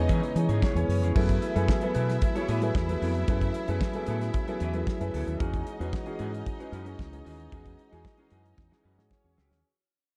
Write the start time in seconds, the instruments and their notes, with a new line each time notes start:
Already playing: tonewheel organ C#3 E3 G#3 B3, grand piano E3 B3 G#4 C#5, string section D#4 D#5
0.08 fingered electric bass E3, clean electric guitar E4 G#4 C#5, kick, closed hi-hat
0.23 muted clean electric guitar stroke, closed hi-hat
0.35 fingered electric bass E3, grand piano E3 B3 G#4 C#5, muted clean electric guitar stroke, closed hi-hat
0.49 fingered electric bass G#2, clean electric guitar E4 G#4 C#5, closed hi-hat
0.62 string section C#4 C#5, clean electric guitar E4 G#4 C#5, kick, snare
0.75 fingered electric bass E2, grand piano E3 B3 G#4 C#5, muted clean electric guitar stroke, closed hi-hat
0.88 fingered electric bass F#2, muted clean electric guitar stroke, open hi-hat
1.02 fingered electric bass F2, clean electric guitar E4 G#4 C#5, closed hi-hat
1.15 fingered electric bass F#2, tonewheel organ E3 A3 B3 G#5, grand piano F#3 E4 G#4 A4 B4, clean electric guitar B3 E4 A4, string section E4 E5, kick, crash
1.29 kick, closed hi-hat
1.42 muted clean electric guitar stroke, closed hi-hat
1.55 fingered electric bass F#2, grand piano F#3 E4 G#4 A4 B4, clean electric guitar B3 E4 A4, closed hi-hat
1.68 muted clean electric guitar stroke, kick, snare
1.81 grand piano F#3 E4 G#4 A4 B4, clean electric guitar B3 E4 A4, closed hi-hat
1.95 fingered electric bass B2, clean electric guitar B3 E4 A4, closed hi-hat
2.08 muted clean electric guitar stroke, snare, closed hi-hat
2.22 muted clean electric guitar stroke, kick, closed hi-hat
2.35 grand piano F#3 E4 G#4 A4 C#5, clean electric guitar B3 E4 A4, closed hi-hat
2.48 fingered electric bass A2, clean electric guitar B3 E4 B4, closed hi-hat
2.62 grand piano F#3 E4 G#4 A4 B4, muted clean electric guitar stroke, closed hi-hat
2.75 fingered electric bass E2, kick, snare
2.88 grand piano F#3 E4 G#4 A4 B4, muted clean electric guitar stroke, closed hi-hat
3.02 fingered electric bass F2, clean electric guitar B3 E4 A4, open hi-hat
3.15 muted clean electric guitar stroke, closed hi-hat
3.28 fingered electric bass F#2, grand piano F#3 E4 G#4 A4 B4, clean electric guitar B3 E4 A4, tonewheel organ C#4, kick, closed hi-hat
3.41 kick, closed hi-hat
3.54 muted clean electric guitar stroke, closed hi-hat
3.68 fingered electric bass F#2, grand piano F#3 E4 G#4 A4 B4, clean electric guitar B3 E4 A4, closed hi-hat
3.81 muted clean electric guitar stroke, kick, snare
3.93 grand piano F#3 E4 G#4 A4 B4, clean electric guitar B3 E4 A4, closed hi-hat
4.06 fingered electric bass A2, clean electric guitar B3 E4 A4, closed hi-hat
4.21 muted clean electric guitar stroke, snare, closed hi-hat
4.34 muted clean electric guitar stroke, kick, closed hi-hat
4.47 grand piano F#3 E4 G#4 A4 B4, clean electric guitar B3 E4 A4, closed hi-hat
4.60 fingered electric bass E2, clean electric guitar B3 E4 B4, closed hi-hat
4.73 grand piano F#3 E4 G#4 A4 B4, muted clean electric guitar stroke, closed hi-hat
4.87 kick, snare
5.00 fingered electric bass F#2, grand piano F#3 E4 G#4 A4 B4, muted clean electric guitar stroke, closed hi-hat
5.14 fingered electric bass D2, clean electric guitar B3 E4 A4, open hi-hat
5.27 fingered electric bass D#2, muted clean electric guitar stroke, closed hi-hat
5.39 fingered electric bass E2, grand piano E3 C#4 F#4 G#4, tonewheel organ G#3 F#4, clean electric guitar C#4 F#4 G#4, string section D#4 D#5, kick, closed hi-hat
5.54 kick, closed hi-hat
5.66 muted clean electric guitar stroke, closed hi-hat
5.79 fingered electric bass E2, grand piano E3 C#4 F#4 B4, clean electric guitar C#4 F#4 G#4, closed hi-hat
5.93 muted clean electric guitar stroke, kick, snare
6.06 grand piano E3 C#4 F#4 G#4, clean electric guitar C#4 F#4 G#4, closed hi-hat
6.19 fingered electric bass G#2, clean electric guitar C#4 F#4 G#4, closed hi-hat
6.33 muted clean electric guitar stroke, closed hi-hat
6.46 muted clean electric guitar stroke, kick, closed hi-hat
6.59 grand piano E3 C#4 F#4 B4, clean electric guitar C#4 F#4 G#4, closed hi-hat
6.72 fingered electric bass F#2, clean electric guitar C#4 F#4 B4, closed hi-hat
6.85 grand piano E3 C#4 F#4 G#4, muted clean electric guitar stroke, closed hi-hat
6.99 fingered electric bass C#2, kick, snare
7.12 grand piano E3 C#4 F#4 G#4, muted clean electric guitar stroke, closed hi-hat
7.25 fingered electric bass D#2, clean electric guitar C#4 F#4 G#4, open hi-hat
7.38 muted clean electric guitar stroke, closed hi-hat
7.51 fingered electric bass E2, grand piano E3 C#4 F#4 G#4, clean electric guitar C#4 F#4 G#4, kick, closed hi-hat
7.66 kick, closed hi-hat
7.79 muted clean electric guitar stroke, closed hi-hat
7.91 fingered electric bass E2, grand piano E3 C#4 F#4 G#4, clean electric guitar C#4 F#4 G#4, closed hi-hat
8.04 muted clean electric guitar stroke, kick, snare
8.17 grand piano E3 C#4 F#4 G#4, clean electric guitar C#4 F#4 G#4, closed hi-hat
8.30 fingered electric bass F#2, clean electric guitar C#4 F#4 G#4, closed hi-hat
8.44 muted clean electric guitar stroke, closed hi-hat
8.57 fingered electric bass E2, muted clean electric guitar stroke, kick, snare
8.70 grand piano E3 C#4 F#4 G#4, clean electric guitar C#4 F#4 G#4, snare
8.83 fingered electric bass F#2, clean electric guitar C#4 F#4 B4
8.97 fingered electric bass G#2, grand piano E3 C#4 F#4 G#4, muted clean electric guitar stroke, snare
9.11 string section C#4 C#5, kick, snare
9.24 fingered electric bass E2, grand piano E3 C#4 F#4 G#4, muted clean electric guitar stroke
9.37 fingered electric bass C#2, clean electric guitar C#4 F#4 G#4, snare
9.51 fingered electric bass D#2, muted clean electric guitar stroke, snare